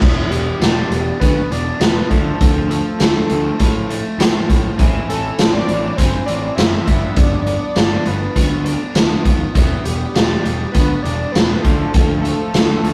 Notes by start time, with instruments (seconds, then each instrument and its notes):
0.00 picked electric bass E1, overdriven electric guitar E3 B3 E4, kick, crash
0.30 picked electric bass E1, overdriven electric guitar E3 B3, analog synth lead G4, closed hi-hat
0.60 picked electric bass E1, overdriven electric guitar E3 B3 D4, snare, closed hi-hat, tambourine
0.90 picked electric bass E1, overdriven electric guitar E3 B3, closed hi-hat
1.20 picked electric bass D2, overdriven electric guitar E3 B3, analog synth lead B4, kick, closed hi-hat
1.50 picked electric bass E1, overdriven electric guitar E3 B3 D4, analog synth lead D5, closed hi-hat
1.80 picked electric bass E1, overdriven electric guitar E3 B3, analog synth lead B4, snare, closed hi-hat, tambourine
2.10 picked electric bass D2, overdriven electric guitar F3 A3 D4, analog synth lead A4, kick, closed hi-hat
2.39 picked electric bass D2, overdriven electric guitar F3 A3, kick, closed hi-hat
2.70 overdriven electric guitar F3 A3, analog synth lead A4, closed hi-hat
2.99 picked electric bass D2, overdriven electric guitar F3 A3, snare, closed hi-hat, tambourine
3.29 picked electric bass D2, overdriven electric guitar F3 A3, closed hi-hat
3.59 picked electric bass A2, overdriven electric guitar F3 A3, kick, closed hi-hat
3.90 overdriven electric guitar F3 A3, closed hi-hat
4.18 picked electric bass A2, overdriven electric guitar F3 A3, snare, closed hi-hat, tambourine
4.48 picked electric bass A2, overdriven electric guitar F3 A3, kick, closed hi-hat
4.78 picked electric bass A1, overdriven electric guitar E3 C4 E4, kick, closed hi-hat
5.08 picked electric bass A1, overdriven electric guitar E3 C4, analog synth lead A4, closed hi-hat
5.38 picked electric bass A1, overdriven electric guitar E3 C4, snare, closed hi-hat, tambourine
5.54 analog synth lead D5
5.67 picked electric bass A1, overdriven electric guitar E3 C4, closed hi-hat
5.97 picked electric bass G1, overdriven electric guitar E3 C4, analog synth lead C5, kick, closed hi-hat
6.26 picked electric bass A1, overdriven electric guitar E3 C4, analog synth lead D5, closed hi-hat
6.56 picked electric bass F#1, overdriven electric guitar E3 C4, analog synth lead E5, snare, closed hi-hat, tambourine
6.85 picked electric bass G1, overdriven electric guitar G3 B3 D4, analog synth lead E5, kick, closed hi-hat
7.16 picked electric bass G1, overdriven electric guitar G3 B3, analog synth lead D5, kick, closed hi-hat
7.46 overdriven electric guitar G3 B3, closed hi-hat
7.75 picked electric bass G1, overdriven electric guitar G3 B3 D4, snare, closed hi-hat, tambourine
8.06 picked electric bass G1, overdriven electric guitar G3 B3, analog synth lead B4, closed hi-hat
8.36 picked electric bass D2, overdriven electric guitar G3 B3, kick, closed hi-hat
8.64 overdriven electric guitar G3 B3 D4, closed hi-hat
8.95 picked electric bass D2, overdriven electric guitar G3 B3, snare, closed hi-hat, tambourine
9.25 picked electric bass D#2, overdriven electric guitar G3 B3, kick, closed hi-hat
9.55 picked electric bass E1, overdriven electric guitar G3 B3 E4, kick, closed hi-hat
9.84 picked electric bass E1, overdriven electric guitar G3 B3, analog synth lead G4, closed hi-hat
10.15 picked electric bass E1, overdriven electric guitar G3 B3 D4, snare, closed hi-hat, tambourine
10.45 picked electric bass E1, overdriven electric guitar G3 B3, closed hi-hat
10.72 picked electric bass D2, overdriven electric guitar G3 B3, analog synth lead B4, kick, closed hi-hat
11.02 picked electric bass E1, overdriven electric guitar G3 B3 D4, analog synth lead D5, closed hi-hat
11.32 picked electric bass E1, overdriven electric guitar G3 B3, analog synth lead B4, snare, closed hi-hat, tambourine
11.61 picked electric bass D2, overdriven electric guitar F3 A3 D4, analog synth lead A4, kick, closed hi-hat
11.94 picked electric bass D2, overdriven electric guitar F3 A3, kick, closed hi-hat
12.21 overdriven electric guitar F3 A3, analog synth lead A4, closed hi-hat
12.54 picked electric bass D2, overdriven electric guitar F3 A3, snare, closed hi-hat, tambourine
12.83 picked electric bass D2, overdriven electric guitar F3 A3, closed hi-hat